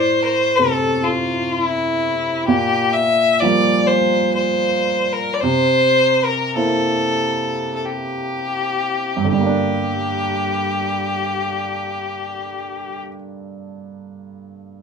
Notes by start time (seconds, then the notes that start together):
Already playing: A2 C5
0.22 A#4 C5
0.56 C3 A3 C4 A4
1.04 F4
1.52 E4
2.47 A#2 G4
2.93 E5
3.40 F3 G3 A#3 D5
3.87 C5
4.35 C5
5.13 A#4
5.33 D5
5.40 C3 C5
6.24 A#4
6.55 A#3 C4 E4 A4
7.75 A4
7.86 G4
9.17 G2
9.24 D3
9.32 G3 G4
9.39 A#3
9.46 D4